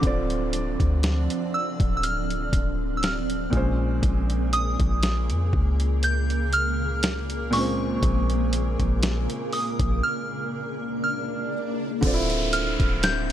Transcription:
Already playing: F3 C4 D4 D6, downlifter
0.00 D1 D3 C4 D5, kick, closed hi-hat
0.05 F4 D5
0.30 closed hi-hat
0.53 closed hi-hat
0.80 D2, kick, closed hi-hat
1.03 snare, closed hi-hat
1.30 closed hi-hat
1.54 E6
1.80 D1, kick, closed hi-hat
1.97 E6
2.03 F6, closed hi-hat
2.30 closed hi-hat
2.53 D1, kick, closed hi-hat
2.97 E6
3.03 F6, snare, closed hi-hat
3.30 closed hi-hat
3.50 A#1 A#2 C#3 G#3 A#3 G#4 A#4, kick, closed hi-hat
3.54 C#4 C5
4.03 A#1, kick, closed hi-hat
4.30 closed hi-hat
4.53 D#6, closed hi-hat
4.80 A#1, kick, closed hi-hat
5.03 snare, closed hi-hat
5.30 F2, closed hi-hat
5.53 C#2, kick
5.80 closed hi-hat
6.03 G6, closed hi-hat
6.30 closed hi-hat
6.53 F6, closed hi-hat
7.03 snare, closed hi-hat
7.30 closed hi-hat
7.50 A#2 G#3 C#6, open hi-hat
7.55 C4 C#4
8.02 A#1, kick, closed hi-hat, swell
8.30 closed hi-hat
8.53 closed hi-hat
8.80 A#1, kick, closed hi-hat
9.03 snare, closed hi-hat
9.30 closed hi-hat
9.53 D#6, open hi-hat
9.80 A#1, kick, closed hi-hat
10.03 F6
11.04 F6
12.01 D1 D3 F3 C4 D4 F4, kick, closed hi-hat, downlifter
12.07 D5
12.14 E4
12.30 closed hi-hat
12.53 F6, closed hi-hat
12.80 D1, kick, closed hi-hat
13.03 G6, snare, closed hi-hat

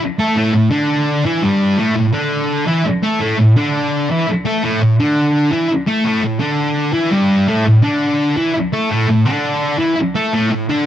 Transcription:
0.20 A3 A4
0.36 A2 A3
0.54 A2
0.71 D3 D4
1.25 E3 E4
1.42 G2 G3
1.77 A2 A3
1.96 A2
2.13 D3 D4
2.66 E3 E4
2.86 muted distorted electric guitar stroke
3.03 A3 A4
3.20 A2 A3
3.38 A2
3.57 D3 D4
4.10 E3 E4
4.28 muted distorted electric guitar stroke
4.45 A3 A4
4.63 A2 A3
4.81 A2
4.99 D3 D4
5.51 E3 E4
5.69 muted distorted electric guitar stroke
5.87 A3 A4
6.04 A2 A3
6.23 A2
6.39 D3 D4
6.93 E3 E4
7.11 G2 G3
7.48 A2 A3
7.66 A2
7.83 D3 D4
8.37 E3 E4
8.55 muted distorted electric guitar stroke
8.73 A3 A4
8.90 A2 A3
9.08 A2
9.25 D3 D4
9.78 E3 E4
9.97 muted distorted electric guitar stroke
10.15 A3 A4
10.33 A2 A3
10.51 A2
10.69 D3 D4

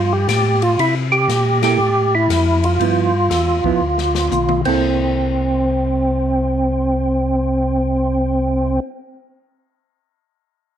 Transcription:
Already playing: G2 F3 B3 F4
0.13 G4
0.28 A2 G4, snare, hi-hat pedal, ride
0.62 F4, ride
0.79 C3 E4, ride
1.12 G4
1.28 A#2, snare, hi-hat pedal, ride
1.63 A#3 E4 G4 A4, snare, ride
1.79 A2
2.15 E4
2.29 F2, snare, hi-hat pedal, ride
2.64 F4, ride
2.80 G2 F3 B3 E4, ride
3.30 E2, snare, hi-hat pedal, ride
3.64 E2 F3 B3 E4, kick
3.81 D2
3.98 snare
4.15 snare
4.31 B1, hi-hat pedal, high tom
4.49 high tom
4.65 C2 A#3 C4 E4 A4, kick, crash

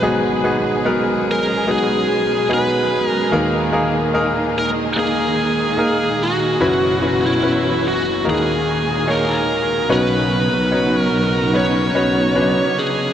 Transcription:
Already playing: B2 F#3 G#3 B3 D#4 F#4 G#4 B4
0.03 G#1 G#2 B3 C#4 D#4 F#4 G#4
0.44 B3 D#4 F#4 G#4
0.85 B3 D#4 F#4 A#4
1.31 A#4
1.67 B3 D#4 F#4 G#4
1.71 G#4
2.49 B3 D#4 F#4 G#4
2.54 B4
3.07 A#4
3.32 D#2 A#2 D#3 A#3 D#4 G#4 A#4
3.72 A#3 D#4 G#4 A#4
4.13 A#3 D#4 G#4 A#4
4.58 A#4
4.96 A#3 D#4 G#4 A#4
5.77 A#3 D#4 G#4 A#4
6.23 F#4
6.60 F#1 F#2 B2 E3 F#3 C#4 E4 F#4 B4
7.02 C#4 E4 F#4 B4
7.26 E4
7.43 C#4 E4 F#4 B4
7.88 F#4
8.24 D#2 A#2 D#3 G#3 A#3 D#4 G#4 A#4
8.30 G#4
9.07 A#3 D#4 G#4 A#4 C#5
9.89 B1 B2 C#3 F#3 B3 C#4 D#4 F#4 B4
10.51 B1
10.71 C#4 D#4 F#4 C#5
11.01 A#4
11.13 B1
11.53 C#4 D#4 F#4 B4 C#5
11.95 B1 C#4 D#4 F#4 B4
12.35 C#4 D4 F#4 B4
12.42 D#4
12.79 G#4

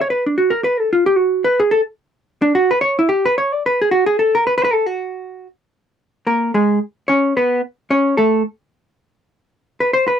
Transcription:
0.01 C#5
0.10 B4
0.26 D4
0.38 F#4
0.50 A#4
0.64 B4
0.80 A4
0.93 F4
1.06 G4
1.17 F#4
1.44 B4
1.60 G#4
1.71 A4
2.42 D4
2.55 F#4
2.71 B4
2.81 C#5
2.99 E4
3.09 G4
3.25 B4
3.38 C#5
3.53 D5
3.66 B4
3.81 G#4
3.91 F#4
4.06 G#4
4.19 A4
4.35 A#4
4.47 B4
4.58 C#5
4.64 B4
4.73 A4
4.86 F#4
6.27 A#3 A#4
6.54 G#3 G#4
7.08 C#4 C#5
7.37 B3 B4
7.90 C#4 C#5
8.17 A3 A4
9.80 B4
9.93 C5
10.08 B4

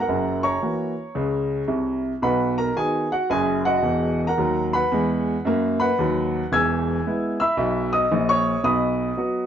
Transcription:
0.00 A#4 F#5 A#5
0.08 F#1 F#2
0.43 C#5 A#5 C#6
0.62 E3 A#3 F#4
1.15 C#2 C#3
1.68 C2 C3
2.22 B1 B2 B4 F#5 B5
2.58 A#4 A#5
2.76 D#3 B3 F#4 G#4 G#5
3.12 F#4 F#5
3.30 F#1 F#2 G#4 G#5
3.65 F#4 D#5 F#5
3.83 E1 E2
4.27 A#4 F#5 A#5
4.38 D#2 F#3
4.73 B4 F#5 B5
4.92 E2 G#3
5.45 F#2 A#3
5.80 B4 F#5 B5
5.99 D#2 F#3
6.52 E1 E2 G#5 E6 G#6
7.07 G#3 B3 E4
7.40 E5 B5 E6
7.57 B1 B2
7.93 D#5 D#6
8.12 A#1 A#2
8.29 C#5 C#6
8.64 B1 B2 D#5 B5 D#6
9.17 F#3 B3 F#4

